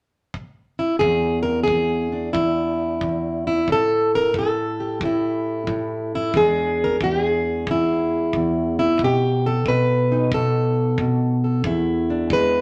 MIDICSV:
0, 0, Header, 1, 3, 480
1, 0, Start_track
1, 0, Tempo, 665188
1, 732, Time_signature, 4, 2, 24, 8
1, 9102, End_track
2, 0, Start_track
2, 0, Title_t, "Steel-string acoustic guitar"
2, 0, Program_c, 0, 25
2, 570, Note_on_c, 0, 64, 75
2, 713, Note_off_c, 0, 64, 0
2, 716, Note_on_c, 0, 68, 97
2, 746, Note_on_c, 0, 40, 69
2, 1026, Note_off_c, 0, 68, 0
2, 1029, Note_on_c, 0, 70, 95
2, 1177, Note_off_c, 0, 70, 0
2, 1180, Note_on_c, 0, 68, 81
2, 1217, Note_off_c, 0, 40, 0
2, 1226, Note_on_c, 0, 40, 65
2, 1532, Note_on_c, 0, 62, 41
2, 1677, Note_off_c, 0, 40, 0
2, 1679, Note_off_c, 0, 68, 0
2, 1682, Note_on_c, 0, 64, 73
2, 1686, Note_on_c, 0, 40, 64
2, 2173, Note_off_c, 0, 40, 0
2, 2181, Note_on_c, 0, 40, 69
2, 2490, Note_off_c, 0, 64, 0
2, 2504, Note_on_c, 0, 64, 82
2, 2639, Note_off_c, 0, 62, 0
2, 2661, Note_off_c, 0, 40, 0
2, 2663, Note_off_c, 0, 64, 0
2, 2666, Note_on_c, 0, 45, 70
2, 2686, Note_on_c, 0, 69, 101
2, 2991, Note_off_c, 0, 69, 0
2, 2997, Note_on_c, 0, 70, 98
2, 3134, Note_off_c, 0, 45, 0
2, 3143, Note_on_c, 0, 45, 63
2, 3150, Note_off_c, 0, 70, 0
2, 3165, Note_on_c, 0, 69, 82
2, 3464, Note_on_c, 0, 67, 42
2, 3618, Note_off_c, 0, 45, 0
2, 3627, Note_on_c, 0, 45, 70
2, 3633, Note_off_c, 0, 69, 0
2, 3646, Note_on_c, 0, 64, 69
2, 4084, Note_off_c, 0, 45, 0
2, 4092, Note_on_c, 0, 45, 67
2, 4431, Note_off_c, 0, 64, 0
2, 4440, Note_on_c, 0, 64, 85
2, 4564, Note_off_c, 0, 67, 0
2, 4577, Note_off_c, 0, 45, 0
2, 4581, Note_on_c, 0, 40, 69
2, 4587, Note_on_c, 0, 56, 44
2, 4587, Note_on_c, 0, 62, 49
2, 4591, Note_off_c, 0, 64, 0
2, 4596, Note_on_c, 0, 68, 106
2, 4936, Note_on_c, 0, 70, 104
2, 5022, Note_off_c, 0, 70, 0
2, 5051, Note_off_c, 0, 40, 0
2, 5060, Note_on_c, 0, 40, 64
2, 5068, Note_off_c, 0, 68, 0
2, 5078, Note_on_c, 0, 67, 81
2, 5222, Note_off_c, 0, 67, 0
2, 5222, Note_on_c, 0, 68, 81
2, 5539, Note_off_c, 0, 40, 0
2, 5547, Note_on_c, 0, 40, 66
2, 5563, Note_on_c, 0, 64, 77
2, 6022, Note_off_c, 0, 40, 0
2, 6027, Note_off_c, 0, 68, 0
2, 6031, Note_on_c, 0, 40, 64
2, 6335, Note_off_c, 0, 64, 0
2, 6343, Note_on_c, 0, 64, 82
2, 6480, Note_off_c, 0, 62, 0
2, 6481, Note_off_c, 0, 56, 0
2, 6498, Note_off_c, 0, 40, 0
2, 6501, Note_off_c, 0, 64, 0
2, 6501, Note_on_c, 0, 47, 69
2, 6526, Note_on_c, 0, 67, 94
2, 6828, Note_off_c, 0, 67, 0
2, 6829, Note_on_c, 0, 69, 93
2, 6966, Note_off_c, 0, 47, 0
2, 6975, Note_on_c, 0, 47, 67
2, 6982, Note_off_c, 0, 69, 0
2, 6988, Note_on_c, 0, 71, 87
2, 7301, Note_on_c, 0, 63, 39
2, 7453, Note_off_c, 0, 47, 0
2, 7459, Note_off_c, 0, 71, 0
2, 7463, Note_on_c, 0, 69, 80
2, 7465, Note_on_c, 0, 47, 64
2, 7924, Note_off_c, 0, 47, 0
2, 7933, Note_on_c, 0, 47, 62
2, 8248, Note_off_c, 0, 69, 0
2, 8256, Note_on_c, 0, 69, 43
2, 8389, Note_off_c, 0, 47, 0
2, 8393, Note_off_c, 0, 63, 0
2, 8393, Note_off_c, 0, 69, 0
2, 8407, Note_on_c, 0, 40, 72
2, 8415, Note_on_c, 0, 64, 51
2, 8732, Note_on_c, 0, 62, 41
2, 8889, Note_on_c, 0, 56, 57
2, 8898, Note_on_c, 0, 71, 91
2, 9102, Note_off_c, 0, 40, 0
2, 9102, Note_off_c, 0, 56, 0
2, 9102, Note_off_c, 0, 62, 0
2, 9102, Note_off_c, 0, 64, 0
2, 9102, Note_off_c, 0, 71, 0
2, 9102, End_track
3, 0, Start_track
3, 0, Title_t, "Drums"
3, 245, Note_on_c, 9, 36, 53
3, 318, Note_off_c, 9, 36, 0
3, 729, Note_on_c, 9, 36, 57
3, 802, Note_off_c, 9, 36, 0
3, 1210, Note_on_c, 9, 36, 60
3, 1282, Note_off_c, 9, 36, 0
3, 1693, Note_on_c, 9, 36, 61
3, 1765, Note_off_c, 9, 36, 0
3, 2174, Note_on_c, 9, 36, 56
3, 2246, Note_off_c, 9, 36, 0
3, 2653, Note_on_c, 9, 36, 59
3, 2726, Note_off_c, 9, 36, 0
3, 3133, Note_on_c, 9, 36, 62
3, 3205, Note_off_c, 9, 36, 0
3, 3614, Note_on_c, 9, 36, 62
3, 3686, Note_off_c, 9, 36, 0
3, 4093, Note_on_c, 9, 36, 59
3, 4165, Note_off_c, 9, 36, 0
3, 4574, Note_on_c, 9, 36, 64
3, 4646, Note_off_c, 9, 36, 0
3, 5056, Note_on_c, 9, 36, 64
3, 5128, Note_off_c, 9, 36, 0
3, 5534, Note_on_c, 9, 36, 65
3, 5606, Note_off_c, 9, 36, 0
3, 6013, Note_on_c, 9, 36, 60
3, 6085, Note_off_c, 9, 36, 0
3, 6488, Note_on_c, 9, 36, 63
3, 6561, Note_off_c, 9, 36, 0
3, 6968, Note_on_c, 9, 36, 63
3, 7041, Note_off_c, 9, 36, 0
3, 7444, Note_on_c, 9, 36, 67
3, 7517, Note_off_c, 9, 36, 0
3, 7922, Note_on_c, 9, 36, 60
3, 7995, Note_off_c, 9, 36, 0
3, 8399, Note_on_c, 9, 36, 68
3, 8472, Note_off_c, 9, 36, 0
3, 8877, Note_on_c, 9, 36, 66
3, 8949, Note_off_c, 9, 36, 0
3, 9102, End_track
0, 0, End_of_file